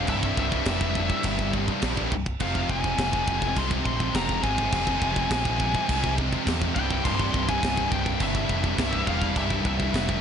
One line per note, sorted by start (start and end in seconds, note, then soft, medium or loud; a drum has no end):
0.00 1.81 C2 loud
0.00 0.10 C2 medium
0.00 1.82 G2 loud
0.00 0.12 G2 medium
0.00 1.82 C3 medium
0.00 1.83 G3 loud
0.00 1.83 E4 medium
0.07 0.30 C1 loud
0.07 0.19 C2 medium
0.07 0.39 E5 loud
0.07 kick medium
0.07 crash medium
0.12 0.20 G2 medium
0.19 0.25 C2 medium
0.19 0.28 G2 medium
0.19 kick medium
0.26 0.33 C2 medium
0.26 0.35 G2 medium
0.34 0.59 C1 medium
0.34 0.41 C2 medium
0.34 0.42 G2 medium
0.34 kick medium
0.40 0.49 C2 medium
0.40 0.50 G2 medium
0.40 1.51 E5 medium
0.49 0.56 C2 medium
0.49 0.58 G2 medium
0.49 kick medium
0.57 0.65 C2 medium
0.57 0.66 G2 medium
0.65 1.09 F1 medium
0.65 0.73 C2 medium
0.65 0.74 G2 medium
0.65 kick medium
0.65 snare loud
0.65 crash medium
0.74 0.80 C2 medium
0.74 0.82 G2 medium
0.80 0.88 C2 medium
0.80 0.89 G2 medium
0.80 kick medium
0.88 0.96 C2 medium
0.88 0.97 G2 medium
0.95 1.04 C2 medium
0.95 1.03 G2 medium
0.95 kick medium
1.04 1.12 C2 medium
1.04 1.11 G2 medium
1.10 1.18 C2 medium
1.10 1.19 G2 medium
1.10 kick medium
1.19 1.26 C2 medium
1.19 1.28 G2 medium
1.23 1.67 G1 medium
1.23 1.34 C2 medium
1.23 kick loud
1.23 crash medium
1.28 1.35 G2 medium
1.34 1.42 C2 medium
1.34 1.43 G2 medium
1.39 1.50 C2 medium
1.39 kick medium
1.44 1.51 G2 medium
1.51 1.57 C2 medium
1.51 1.59 G2 medium
1.51 kick medium
1.57 1.65 C2 medium
1.57 1.66 G2 medium
1.66 1.73 C2 medium
1.66 1.74 G2 medium
1.66 kick medium
1.73 1.80 C2 medium
1.73 1.81 G2 medium
1.81 2.04 A#1 medium
1.81 1.88 C2 medium
1.81 2.10 C2 medium
1.81 1.89 G2 medium
1.81 2.11 G2 medium
1.81 2.11 C3 medium
1.81 kick medium
1.81 snare loud
1.81 crash medium
1.85 1.96 C2 medium
1.85 2.11 G3 medium
1.85 2.12 E4 medium
1.89 1.96 G2 medium
1.97 2.04 C2 medium
1.97 2.04 G2 medium
1.97 kick medium
2.04 2.12 C2 medium
2.04 2.12 G2 medium
2.12 2.33 C1 medium
2.12 kick medium
2.26 kick medium
2.40 2.62 F1 loud
2.40 4.42 F2 medium
2.40 2.48 F2 medium
2.40 2.49 C3 medium
2.40 4.43 C3 loud
2.40 4.43 F3 loud
2.40 4.43 G#3 loud
2.40 4.43 C4 medium
2.40 2.70 F5 medium
2.40 kick medium
2.40 crash medium
2.44 4.42 F4 medium
2.48 2.56 F2 medium
2.48 2.57 C3 medium
2.55 2.63 F2 medium
2.55 2.64 C3 medium
2.55 kick medium
2.63 2.71 F2 medium
2.63 2.71 C3 medium
2.69 2.91 F1 medium
2.69 2.79 F2 medium
2.69 2.79 C3 medium
2.69 3.60 G#5 medium
2.69 kick medium
2.80 2.86 F2 medium
2.80 2.87 C3 medium
2.84 2.94 F2 medium
2.84 2.95 C3 medium
2.84 kick medium
2.95 3.20 F1 medium
2.95 3.02 F2 medium
2.95 3.03 C3 medium
2.95 kick medium
2.95 crash medium
3.00 3.10 F2 medium
3.00 3.10 C3 medium
3.00 snare loud
3.10 3.18 F2 medium
3.10 3.18 C3 medium
3.10 kick medium
3.19 3.25 F2 medium
3.19 3.26 C3 medium
3.26 3.49 F1 medium
3.26 3.32 F2 medium
3.26 3.32 C3 medium
3.26 kick medium
3.33 3.40 F2 medium
3.33 3.40 C3 medium
3.41 3.47 F2 medium
3.41 3.48 C3 medium
3.41 kick medium
3.48 3.55 F2 medium
3.48 3.56 C3 medium
3.56 3.78 C2 medium
3.56 3.62 F2 medium
3.56 3.64 C3 medium
3.56 3.66 C6 loud
3.56 kick medium
3.56 crash medium
3.63 3.70 F2 medium
3.63 3.71 C3 medium
3.71 3.79 F2 medium
3.71 3.79 C3 medium
3.71 kick medium
3.79 3.87 F2 medium
3.79 3.87 C3 medium
3.85 4.07 A#1 medium
3.85 3.95 F2 medium
3.85 3.95 C3 medium
3.85 4.15 C6 loud
3.85 kick medium
3.95 4.01 F2 medium
3.95 4.02 C3 medium
4.00 4.09 F2 medium
4.00 4.10 C3 medium
4.00 kick medium
4.11 4.36 F1 medium
4.11 4.17 F2 medium
4.11 4.18 C3 medium
4.11 crash medium
4.15 4.25 F2 medium
4.15 4.42 A#5 loud
4.15 kick medium
4.15 snare loud
4.19 4.25 C3 medium
4.25 4.33 F2 medium
4.25 4.33 C3 medium
4.25 kick medium
4.33 4.41 F2 medium
4.33 4.41 C3 medium
4.41 4.65 G#1 medium
4.41 4.49 F2 medium
4.41 4.47 C3 medium
4.41 4.72 G#3 medium
4.41 4.74 C4 medium
4.41 4.71 F4 medium
4.41 6.13 G#5 medium
4.41 kick medium
4.46 4.71 F2 medium
4.46 4.57 F2 medium
4.46 4.72 C3 medium
4.46 4.56 C3 medium
4.46 4.72 F3 medium
4.57 4.63 F2 medium
4.57 4.64 C3 medium
4.57 kick medium
4.64 4.71 F2 medium
4.64 4.72 C3 medium
4.72 4.94 F1 loud
4.72 6.74 F2 loud
4.72 4.80 F2 medium
4.72 6.74 C3 medium
4.72 4.81 C3 medium
4.72 6.75 F3 medium
4.72 6.75 G#3 loud
4.72 8.25 C4 loud
4.72 6.75 F4 loud
4.72 kick loud
4.72 crash medium
4.81 4.88 F2 medium
4.81 4.89 C3 medium
4.87 4.96 F2 medium
4.87 4.96 C3 medium
4.87 kick medium
4.97 5.03 F2 medium
4.97 5.03 C3 medium
5.02 5.23 F1 medium
5.02 5.10 F2 medium
5.02 5.11 C3 medium
5.02 kick medium
5.10 5.18 F2 medium
5.10 5.19 C3 medium
5.16 5.26 F2 medium
5.16 5.27 C3 medium
5.16 kick medium
5.27 5.34 F2 medium
5.27 5.35 C3 medium
5.27 crash medium
5.31 5.74 A#1 medium
5.31 kick medium
5.31 snare loud
5.35 5.42 F2 medium
5.35 5.43 C3 medium
5.43 5.51 F2 medium
5.43 5.51 C3 medium
5.43 kick medium
5.52 5.57 F2 medium
5.52 5.59 C3 medium
5.58 5.65 F2 medium
5.58 5.66 C3 medium
5.58 kick medium
5.67 5.74 F2 medium
5.67 5.74 C3 medium
5.74 5.82 F2 medium
5.74 5.82 C3 medium
5.74 kick medium
5.82 5.89 F2 medium
5.82 5.90 C3 medium
5.89 6.32 C2 medium
5.89 5.96 F2 medium
5.89 5.98 C3 medium
5.89 kick medium
5.89 crash medium
5.97 6.05 F2 medium
5.97 6.04 C3 medium
6.04 6.13 F2 medium
6.04 6.13 C3 medium
6.04 kick medium
6.13 6.21 F2 medium
6.13 6.20 C3 medium
6.18 6.28 F2 medium
6.18 6.28 C3 medium
6.18 kick medium
6.28 6.36 F2 medium
6.28 6.36 C3 medium
6.33 kick medium
6.37 6.44 F2 medium
6.37 6.44 C3 medium
6.44 6.68 E2 medium
6.44 6.52 F2 medium
6.44 6.52 C3 medium
6.44 kick medium
6.44 crash medium
6.48 6.60 F2 medium
6.48 snare loud
6.53 6.61 C3 medium
6.60 6.68 F2 medium
6.60 6.68 C3 medium
6.60 kick medium
6.68 6.76 F2 medium
6.68 6.76 C3 medium
6.75 6.97 C1 medium
6.75 8.77 C2 medium
6.75 6.84 C2 medium
6.75 8.77 G2 loud
6.75 6.84 G2 medium
6.75 8.79 C3 loud
6.75 8.80 G3 loud
6.75 8.81 E4 loud
6.75 7.05 G5 medium
6.75 kick medium
6.85 6.91 C2 medium
6.85 6.91 G2 medium
6.91 6.98 C2 medium
6.91 6.99 G2 medium
6.91 kick medium
6.98 7.06 C2 medium
6.98 7.07 G2 medium
7.04 7.26 C1 loud
7.04 7.15 C2 medium
7.04 7.15 G2 medium
7.04 7.49 C6 loud
7.04 kick medium
7.04 crash medium
7.15 7.22 C2 medium
7.15 7.23 G2 medium
7.19 7.30 C2 medium
7.19 7.30 G2 medium
7.19 kick medium
7.30 7.37 C2 medium
7.30 7.37 G2 medium
7.34 7.55 C1 medium
7.34 7.45 C2 medium
7.34 7.45 G2 medium
7.34 kick medium
7.46 7.52 C2 medium
7.46 7.53 G2 medium
7.46 7.91 G#5 loud
7.46 kick medium
7.52 7.60 C2 medium
7.52 7.61 G2 medium
7.61 7.84 C1 medium
7.61 7.68 C2 medium
7.61 7.67 G2 medium
7.61 kick medium
7.61 snare loud
7.61 crash medium
7.68 7.75 C2 medium
7.68 7.75 G2 medium
7.76 7.82 C2 medium
7.76 7.83 G2 medium
7.76 kick medium
7.83 7.90 C2 medium
7.83 7.91 G2 medium
7.91 8.13 C1 loud
7.91 7.98 C2 medium
7.91 7.99 G2 medium
7.91 8.22 G5 loud
7.91 kick medium
7.98 8.06 C2 medium
7.98 8.06 G2 medium
8.06 8.13 C2 medium
8.06 8.13 G2 medium
8.06 kick medium
8.13 8.21 C2 medium
8.13 8.21 G2 medium
8.20 8.42 G1 loud
8.20 8.29 C2 medium
8.20 8.29 G2 medium
8.20 9.03 E5 medium
8.20 kick loud
8.20 crash medium
8.29 8.36 C2 medium
8.29 8.36 G2 medium
8.35 8.44 C2 medium
8.35 8.44 G2 medium
8.35 kick medium
8.44 8.52 C2 medium
8.44 8.52 G2 medium
8.49 8.71 F1 loud
8.49 8.59 C2 medium
8.49 kick medium
8.53 8.60 G2 medium
8.60 8.67 C2 medium
8.60 8.67 G2 medium
8.60 kick medium
8.68 8.74 C2 medium
8.68 8.75 G2 medium
8.75 9.00 C1 medium
8.75 8.82 C2 medium
8.75 9.07 C2 medium
8.75 8.82 G2 medium
8.75 kick medium
8.75 crash medium
8.79 9.06 G2 medium
8.79 9.09 C3 medium
8.79 9.10 G3 medium
8.79 9.10 E4 medium
8.79 snare loud
8.83 8.89 C2 medium
8.83 8.90 G2 medium
8.90 8.97 C2 medium
8.90 8.97 G2 medium
8.90 kick medium
8.98 9.06 C2 soft
8.98 9.05 G2 medium
9.07 9.28 E1 medium
9.07 9.14 C2 medium
9.07 10.21 C2 medium
9.07 9.13 G2 medium
9.07 10.21 G2 medium
9.07 10.21 C3 medium
9.07 10.21 G3 loud
9.07 9.35 F5 medium
9.07 kick medium
9.11 9.22 C2 medium
9.11 9.22 G2 medium
9.11 10.21 E4 loud
9.22 9.29 C2 medium
9.22 9.30 G2 medium
9.22 kick medium
9.29 9.37 C2 medium
9.29 9.38 G2 medium
9.36 9.57 C1 loud
9.36 9.45 C2 medium
9.36 9.45 G2 medium
9.36 9.64 E5 medium
9.36 kick medium
9.36 crash medium
9.45 9.52 C2 medium
9.45 9.53 G2 medium
9.50 9.60 C2 medium
9.50 9.60 G2 medium
9.50 kick medium
9.61 9.67 C2 medium
9.61 9.68 G2 medium
9.65 9.86 C1 medium
9.65 9.75 C2 medium
9.65 9.76 G2 medium
9.65 10.21 E5 medium
9.65 kick loud
9.76 9.83 C2 medium
9.76 9.84 G2 medium
9.80 kick medium
9.84 9.91 C2 medium
9.84 9.92 G2 medium
9.91 10.21 F1 medium
9.91 9.99 C2 medium
9.91 10.00 G2 medium
9.91 kick medium
9.91 crash medium
9.96 snare loud
10.00 10.06 C2 medium
10.00 10.08 G2 medium
10.07 10.14 C2 medium
10.07 10.15 G2 medium
10.07 kick medium
10.15 10.21 C2 medium
10.15 10.21 G2 medium